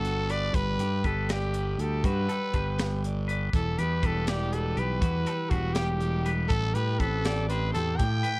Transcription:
Already playing: G1 G3 B3 D4 F#4 A4
0.05 F#4, closed hi-hat
0.29 A4 B4 D5, closed hi-hat
0.54 G1 G3 B4, kick, closed hi-hat
0.79 G2 G4, closed hi-hat
1.04 G1 G4 A4 B4, kick, closed hi-hat
1.29 G4 D5, snare, closed hi-hat
1.54 B4, closed hi-hat
1.78 D2 G4 A4, closed hi-hat
2.03 G2 G3 F#4 B4, kick, closed hi-hat
2.29 G4 A4, closed hi-hat
2.53 G1 G4 B4, kick, closed hi-hat
2.79 G4, snare, closed hi-hat
3.04 D5, closed hi-hat
3.28 B4 D5, closed hi-hat
3.54 E1 E3 A4, kick, closed hi-hat
3.79 E2 G4 B4, closed hi-hat
4.03 E1 G3 A4 B4, kick, closed hi-hat
4.27 G3 G4 D5, snare, closed hi-hat
4.53 G4 A4 B4, closed hi-hat
4.77 B1 G4 B4, closed hi-hat
5.02 E2 E3 F#4, kick, closed hi-hat
5.27 G4 A4, closed hi-hat
5.50 E1 G3 F#4 B4, kick, closed hi-hat
5.74 G3 G4, snare, closed hi-hat
6.00 G3, closed hi-hat
6.25 G3 B4, closed hi-hat
6.48 A1 A2 A4, kick, closed hi-hat
6.74 A2 G4 B4, closed hi-hat
7.00 A1 C4 A4 B4, kick, closed hi-hat
7.25 G4 D5, snare, closed hi-hat
7.48 G4 B4 C5, closed hi-hat
7.73 E2 G4 A4, closed hi-hat
7.96 A2 G4 G5, kick, closed hi-hat
8.23 B4, closed hi-hat

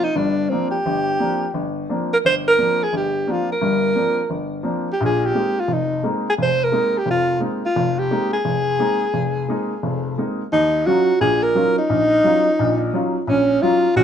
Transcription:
0.04 D#4
0.15 G1 G2 D4
0.49 F3 A#3 C4 D4
0.71 G4
0.86 G1
1.20 F3 A#3 C4 D4
1.54 G1
1.89 F3 A#3 C4 D4
2.13 A#4
2.25 G1 C5
2.47 A#4
2.58 F3 A#3 C4 D4
2.83 G#4
2.93 G1 G4
3.27 F3 A#3 C4 D4
3.31 F4
3.52 A#4
3.61 G1 G2
3.96 F3 A#3 C4 D4
4.30 G1
4.63 F3 A#3 C4 D4
4.92 G4
5.01 A#1 A#2
5.05 G#4
5.26 G4
5.35 G#3 A#3 C4 D#4
5.60 F4
5.68 F1
5.73 D#4
6.03 G#3 A#3 C4 D#4
6.30 G#4
6.38 F1
6.43 C5
6.64 A#4
6.72 G#3 A#3 C4 D#4
6.98 G4
7.06 F1 F2
7.10 F4
7.40 G#3 A#3 C4 D#4
7.66 F4
7.76 F1
7.99 G4
8.11 G#3 A#3 C4 D#4
8.33 G#4
8.45 F1
8.79 G#3 A#3 C4 D#4
9.14 F1
9.48 G#3 A#3 C4 D#4
9.83 F1 F2
10.18 G#3 A#3 C4 D#4
10.52 D#2 D#4
10.86 F#3 C#4 D#4 F4 F#4
11.21 A#1 A#2 G#4
11.43 A#4
11.55 F#3 C#4 D#4 F4
11.78 D#4
11.90 A#1
12.24 F#3 C#4 D#4 F4
12.59 A#1 A#2
12.93 F#3 C#4 D#4 F4
13.27 A#1 C#4
13.62 F#3 C#4 D#4 F4
13.96 A#1 A#2 F#4

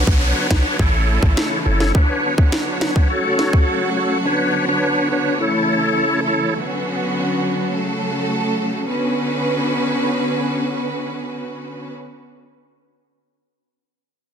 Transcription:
Already playing: D3 F#3 B3 F#4 C#5, downlifter
0.07 B1 D4 B4 C#5, kick
0.50 B1 D4 C#5, finger snap, kick, snare
0.79 A1 C#3 E3 A3 E4 A4 C#5, kick
1.23 A1, kick
1.37 finger snap, snare
1.66 F#1 E4 A4 C#5
1.80 snare
1.94 D3 F#3 B3 D4 F#4 B4 C#5, kick
2.38 D4 B4 C#5, kick
2.52 finger snap, snare
2.81 D4 B4 C#5, finger snap, snare
2.96 kick
3.10 C#3 A3 F#4 A4 C#5
3.39 snare
3.53 kick
3.96 F#4 A4 C#5
4.25 D3 B3 D4 B4 C#5
4.68 D4 B4 C#5
5.12 D4 B4 C#5
5.41 C#3 E3 A3 E4 A4 C#5
6.27 E4 A4 C#5
6.56 D3 F#3 B3 C#4 F#4
7.72 C#3 A3 F#4 A4
8.87 D3 B3 C#4 F#4 B4

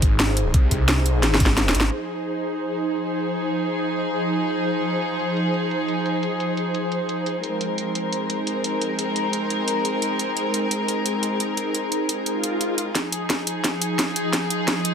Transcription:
Already playing: D#4 G#4 C5
0.02 G#1, kick, closed hi-hat
0.20 G#1, snare, closed hi-hat
0.37 closed hi-hat
0.54 C2, kick, closed hi-hat
0.71 kick, closed hi-hat
0.89 snare, closed hi-hat
1.06 closed hi-hat
1.23 snare, closed hi-hat
1.34 snare
1.40 G#1, kick, closed hi-hat
1.46 snare
1.57 snare, closed hi-hat
1.69 snare
1.75 G#1, closed hi-hat
1.80 snare
1.92 F3 D#4 G#4, closed hi-hat, crash
2.26 closed hi-hat
2.44 closed hi-hat
2.61 closed hi-hat
2.78 closed hi-hat
2.95 closed hi-hat
3.12 closed hi-hat
3.30 closed hi-hat
3.47 closed hi-hat
3.64 closed hi-hat
3.82 closed hi-hat
3.99 closed hi-hat
4.16 closed hi-hat
4.33 closed hi-hat
4.51 closed hi-hat
4.68 closed hi-hat
4.85 closed hi-hat
5.02 closed hi-hat
5.20 closed hi-hat
5.37 closed hi-hat
5.54 closed hi-hat
5.71 closed hi-hat
5.88 closed hi-hat
6.06 closed hi-hat
6.23 closed hi-hat
6.40 closed hi-hat
6.57 closed hi-hat
6.75 closed hi-hat
6.92 closed hi-hat
7.09 closed hi-hat
7.26 closed hi-hat
7.43 G#3 C4 D#4 A#4, closed hi-hat
7.51 G#4
7.61 closed hi-hat
7.78 closed hi-hat
7.95 closed hi-hat
8.13 closed hi-hat
8.30 closed hi-hat
8.47 closed hi-hat
8.64 closed hi-hat
8.81 closed hi-hat
8.99 closed hi-hat
9.16 closed hi-hat
9.33 closed hi-hat
9.50 closed hi-hat
9.68 closed hi-hat
9.85 closed hi-hat
10.02 closed hi-hat
10.19 closed hi-hat
10.37 closed hi-hat
10.54 closed hi-hat
10.71 closed hi-hat
10.88 closed hi-hat
11.06 closed hi-hat
11.23 closed hi-hat
11.40 closed hi-hat
11.57 closed hi-hat
11.75 closed hi-hat
11.92 closed hi-hat
12.09 closed hi-hat
12.26 closed hi-hat, swell
12.44 closed hi-hat
12.61 closed hi-hat
12.78 closed hi-hat
12.95 F3 D#4 G#4, kick, snare, closed hi-hat
13.12 closed hi-hat
13.30 kick, snare, closed hi-hat
13.47 closed hi-hat
13.64 kick, snare, closed hi-hat
13.82 closed hi-hat
13.99 kick, snare, closed hi-hat
14.13 C5, closed hi-hat
14.33 kick, snare, closed hi-hat
14.50 closed hi-hat
14.68 kick, snare, closed hi-hat
14.85 closed hi-hat

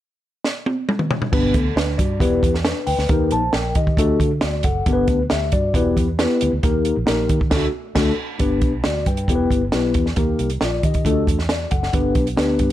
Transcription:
0.44 snare
0.66 high tom
0.89 mid tom
0.99 mid tom
1.11 floor tom
1.22 floor tom
1.32 G1 B3 D4 G4 B4, kick, crash
1.54 D2 A4, kick, closed hi-hat
1.76 D2 D4 B4, snare, closed hi-hat
1.98 G2 F#4 D5, kick, closed hi-hat
2.20 E1 B3 E4 G4 B4, kick, closed hi-hat
2.43 E2, kick, closed hi-hat
2.55 snare
2.65 D4 B4, snare, closed hi-hat
2.87 D2 B4 G5, open hi-hat
2.98 D2, snare
3.09 D#2 A#3 D#4 G4 A#4, kick, closed hi-hat
3.31 A#1 C5 A5, closed hi-hat
3.53 A#1 A#4 G5, snare, closed hi-hat
3.75 D#3 G4 D#5, kick, closed hi-hat
3.87 kick
3.97 D2 A3 D4 F#4 A4, kick, closed hi-hat
4.20 D3, kick, closed hi-hat
4.41 D2 F#4 D5, snare, closed hi-hat
4.63 F#1 A4 F#5, kick, closed hi-hat
4.86 G1 B3 D4 G4 A#4, kick, closed hi-hat
4.93 B4
5.08 D2, kick, closed hi-hat
5.30 D2 G4 E5, snare, closed hi-hat
5.52 G2 F#4 D5, kick, closed hi-hat
5.74 E1 B3 E4 G4 B4, kick, closed hi-hat
5.97 E2, kick, closed hi-hat
6.19 B3 E4 G4 B4, snare, closed hi-hat
6.41 D2, closed hi-hat
6.53 D2
6.63 D#2 A#3 D#4 G4 A#4, kick, closed hi-hat
6.85 closed hi-hat
6.97 A#1
7.06 A#1 A#3 D#4 G4 A#4, snare, closed hi-hat
7.29 D#3, kick, closed hi-hat
7.41 kick
7.50 D2 A3 D4 A4, kick, snare, crash
7.57 F#4
7.95 D2 A3 D4 F#4, kick, snare, crash
8.01 A4
8.39 G1 B3 D4 G4 B4, kick, closed hi-hat
8.61 B1, kick, closed hi-hat
8.84 D2 F#4 D5, snare, closed hi-hat
9.06 G2 B4 G5, kick, closed hi-hat
9.17 closed hi-hat
9.28 E1 B3 E4 G4 A4, kick, closed hi-hat
9.36 B4
9.50 G1, kick, closed hi-hat
9.72 B1 B3 E4 G4 B4, snare, closed hi-hat
9.94 E2, kick, closed hi-hat
10.06 snare
10.16 D#2 A#3 D#4 G4 A#4, kick, closed hi-hat
10.39 C2, closed hi-hat
10.50 closed hi-hat
10.61 A#1 F4 D5, snare, closed hi-hat
10.83 D#3 G4 D#5, kick, closed hi-hat
10.94 kick, closed hi-hat
11.05 D2 A3 D4 F4 A4, kick, closed hi-hat
11.11 F#4
11.27 E2, kick, closed hi-hat
11.39 snare
11.49 F#4 D5, snare, closed hi-hat
11.71 F#1 A4 F#5, kick, closed hi-hat
11.83 snare
11.93 G1 B3 D4 G4 B4, kick, closed hi-hat
12.15 B1, kick, closed hi-hat
12.27 closed hi-hat
12.37 D2 B3 D4 G4 B4, snare, closed hi-hat
12.59 G2, kick, closed hi-hat

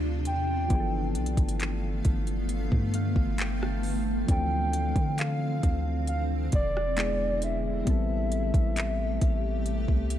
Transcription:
Already playing: D2 C3 C4 D4 F4 A4
0.25 E2 G5, closed hi-hat
0.68 G1 D3 E3 F3 A3 B3 D4 F5, kick, closed hi-hat
0.74 G#4
0.80 A4
1.15 B1, closed hi-hat
1.26 closed hi-hat
1.37 G1, kick, closed hi-hat
1.49 closed hi-hat
1.60 clap, closed hi-hat
2.05 G1, kick, closed hi-hat
2.27 closed hi-hat
2.49 closed hi-hat
2.72 G2, kick
2.94 F5, closed hi-hat
3.16 G1, kick
3.38 G5, clap, closed hi-hat
3.62 A5, cross-stick
3.83 open hi-hat
4.26 D2 D3 F3 C4 D4 F5 G5, kick, closed hi-hat
4.30 E3 A4
4.73 closed hi-hat
4.96 D3, kick, closed hi-hat
5.18 F5, clap, closed hi-hat
5.63 D2, kick, closed hi-hat
6.07 F5, closed hi-hat
6.52 E1 D5, kick, closed hi-hat
6.77 cross-stick
6.96 G#3 B3 D4 E4 G#4, clap, closed hi-hat
7.42 E5, closed hi-hat
7.66 E5
7.85 A1 C3 G3 A3 B3 C4 G4, kick, closed hi-hat
7.89 E4 A4
8.32 closed hi-hat
8.54 A1, kick, closed hi-hat
8.77 clap, closed hi-hat
9.21 A1, kick, closed hi-hat
9.66 closed hi-hat
9.88 C2, kick
10.10 closed hi-hat

